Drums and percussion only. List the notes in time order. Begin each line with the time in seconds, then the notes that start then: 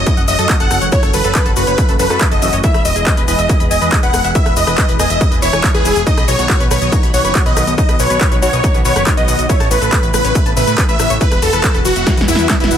0.06 kick, closed hi-hat, shaker
0.17 closed hi-hat, shaker
0.28 open hi-hat, shaker
0.39 closed hi-hat, shaker
0.49 kick, clap, closed hi-hat, shaker
0.60 closed hi-hat, shaker
0.71 cross-stick, open hi-hat, shaker
0.81 closed hi-hat, shaker
0.92 kick, closed hi-hat, shaker
1.03 cross-stick, closed hi-hat, shaker
1.14 open hi-hat, shaker
1.24 closed hi-hat, shaker
1.35 kick, clap, closed hi-hat, shaker
1.46 closed hi-hat, shaker
1.56 open hi-hat, shaker
1.67 closed hi-hat, shaker
1.78 kick, closed hi-hat, shaker
1.89 closed hi-hat, shaker
1.99 open hi-hat, shaker
2.10 cross-stick, closed hi-hat, shaker
2.21 kick, clap, closed hi-hat, shaker
2.32 closed hi-hat, shaker
2.42 open hi-hat, shaker
2.53 closed hi-hat, shaker
2.64 kick, closed hi-hat, shaker
2.74 cross-stick, closed hi-hat, shaker
2.85 open hi-hat, shaker
2.96 closed hi-hat, shaker
3.07 kick, clap, closed hi-hat, shaker
3.17 closed hi-hat, shaker
3.28 open hi-hat, shaker
3.39 closed hi-hat, shaker
3.49 kick, closed hi-hat, shaker
3.60 closed hi-hat, shaker
3.71 open hi-hat, shaker
3.82 closed hi-hat, shaker
3.92 kick, clap, closed hi-hat, shaker
4.03 closed hi-hat, shaker
4.14 cross-stick, open hi-hat, shaker
4.24 closed hi-hat, shaker
4.35 kick, closed hi-hat, shaker
4.46 cross-stick, closed hi-hat, shaker
4.57 open hi-hat, shaker
4.67 cross-stick, closed hi-hat, shaker
4.78 kick, clap, closed hi-hat, shaker
4.89 closed hi-hat, shaker
4.99 cross-stick, open hi-hat, shaker
5.10 closed hi-hat, shaker
5.21 kick, closed hi-hat, shaker
5.32 closed hi-hat, shaker
5.42 open hi-hat, shaker
5.53 cross-stick, closed hi-hat, shaker
5.64 kick, clap, closed hi-hat, shaker
5.75 closed hi-hat, shaker
5.85 open hi-hat, shaker
5.96 closed hi-hat, shaker
6.07 kick, closed hi-hat, shaker
6.18 cross-stick, closed hi-hat, shaker
6.28 open hi-hat, shaker
6.39 closed hi-hat, shaker
6.49 kick, clap, closed hi-hat, shaker
6.60 closed hi-hat, shaker
6.71 cross-stick, open hi-hat, shaker
6.82 closed hi-hat, shaker
6.92 kick, closed hi-hat, shaker
7.03 closed hi-hat, shaker
7.14 open hi-hat, shaker
7.25 closed hi-hat, shaker
7.35 kick, clap, closed hi-hat, shaker
7.46 closed hi-hat, shaker
7.57 cross-stick, open hi-hat, shaker
7.67 closed hi-hat, shaker
7.78 kick, closed hi-hat, shaker
7.89 cross-stick, closed hi-hat, shaker
8.00 open hi-hat, shaker
8.10 closed hi-hat, shaker
8.21 kick, clap, closed hi-hat, shaker
8.32 closed hi-hat, shaker
8.42 open hi-hat, shaker
8.53 closed hi-hat, shaker
8.64 kick, closed hi-hat, shaker
8.74 closed hi-hat, shaker
8.85 open hi-hat, shaker
8.96 cross-stick, closed hi-hat, shaker
9.07 kick, clap, closed hi-hat, shaker
9.17 closed hi-hat, shaker
9.28 open hi-hat, shaker
9.39 closed hi-hat, shaker
9.49 kick, closed hi-hat, shaker
9.60 cross-stick, closed hi-hat, shaker
9.71 open hi-hat, shaker
9.82 closed hi-hat, shaker
9.92 kick, clap, closed hi-hat, shaker
10.03 closed hi-hat, shaker
10.14 cross-stick, open hi-hat, shaker
10.25 closed hi-hat, shaker
10.35 kick, closed hi-hat, shaker
10.46 closed hi-hat, shaker
10.57 open hi-hat, shaker
10.67 closed hi-hat, shaker
10.78 kick, clap, closed hi-hat, shaker
10.89 closed hi-hat, shaker
10.99 cross-stick, open hi-hat, shaker
11.10 closed hi-hat, shaker
11.21 kick, closed hi-hat, shaker
11.32 cross-stick, closed hi-hat, shaker
11.42 open hi-hat, shaker
11.53 cross-stick, closed hi-hat, shaker
11.64 kick, clap, closed hi-hat, shaker
11.75 closed hi-hat, shaker
11.85 open hi-hat, shaker
11.96 closed hi-hat, shaker
12.07 kick, snare, closed hi-hat, shaker
12.17 snare, closed hi-hat, shaker
12.28 open hi-hat, shaker
12.35 snare, closed hi-hat, shaker
12.49 kick, snare, clap, closed hi-hat, shaker
12.60 snare, closed hi-hat, shaker
12.71 open hi-hat, shaker